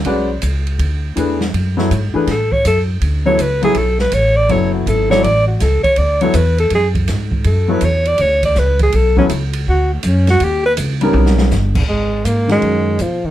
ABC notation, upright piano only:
X:1
M:4/4
L:1/8
Q:"Swing" 1/4=162
K:Bdor
V:1 name="Upright piano"
[G,CFBd] z4 z [E,A,DGB] z | z [F,B,EAc] z [E,A,DGB] z4 | z [F,B,EAc] z [F,B,EAc] z4 | [F,B,EAc]3 [F,B,EAd] z4 |
z [F,B,EAc] z6 | z [F,B,EAc] z6 | z [F,B,EAc] z6 | z3 [=G,B,C^D^A]3 z2 |
[K:G#dor] z3 [D,G,CFA]3 z2 |]